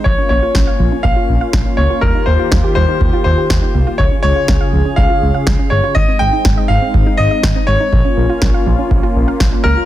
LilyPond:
<<
  \new Staff \with { instrumentName = "Grand piano" } { \time 4/4 \key bes \dorian \tempo 4 = 122 des''8 des''4. f''4. des''8 | bes'8 c''4 c''4 c''4. | des''8 des''4. f''4. des''8 | ees''8 g''4 f''4 ees''4 des''8~ |
des''4. r2 bes'8 | }
  \new Staff \with { instrumentName = "Analog synth pad" } { \time 4/4 \key bes \dorian << { <des' f'>1 | <ees g'>1 | <des aes'>1 | <c' ees'>1 |
<des' f'>1 | } \\ { bes1~ | bes1 | des'1 | aes1 |
bes1 | } >> }
  \new Staff \with { instrumentName = "Synth arpeggio sound" } { \time 4/4 \key bes \dorian f16 des'16 bes16 f'16 des'16 f''16 f16 des'16 bes16 f'16 r16 f''16 f16 des'16 bes16 f'16 | g16 ees'16 bes16 f'16 ees'16 g'16 g16 ees'16 bes16 f'16 r16 g'16 g16 ees'16 bes16 f'16 | f16 des'16 aes16 f'16 des'16 f''16 f16 des'16 aes16 f'16 r16 f''16 f16 des'16 aes16 f'16 | ees16 c'16 aes16 ees'16 c'16 ees''16 ees16 c'16 aes16 ees'16 r16 ees''16 ees16 c'16 aes16 ees'16 |
f16 des'16 bes16 f'16 des'16 f''16 f16 des'16 bes16 f'16 r16 f''16 f16 des'16 bes16 f'16 | }
  \new Staff \with { instrumentName = "Analog synth bass" } { \clef bass \time 4/4 \key bes \dorian bes,,16 r16 bes,,16 r16 bes,,16 r16 bes,,16 r16 bes,,16 r16 bes,,16 r16 bes,,16 r16 des,16 r16 | ees,16 r16 ees,16 r16 ees,16 r16 ees,16 r16 ees,16 r16 ees,16 r16 ees,16 r16 c,16 r16 | des,16 r16 des,16 r16 des,16 r16 des,16 r16 des,16 r16 des,16 r16 des,16 r16 g,,16 r16 | aes,,16 r16 aes,,16 r16 aes,,16 r16 aes,,16 r16 aes,,16 r16 aes,,16 r16 aes,,16 r16 aes,,16 r16 |
bes,,16 r16 bes,,16 r16 bes,,16 r16 bes,,16 r16 bes,,16 r16 bes,,16 r16 bes,,16 r16 des,16 r16 | }
  \new DrumStaff \with { instrumentName = "Drums" } \drummode { \time 4/4 bd4 <bd sn>4 bd4 <bd sn>4 | bd4 <bd sn>4 bd4 <bd sn>4 | bd4 <bd sn>4 bd4 <bd sn>4 | bd4 <bd sn>4 bd4 <bd sn>4 |
bd4 <bd sn>4 bd4 <bd sn>4 | }
>>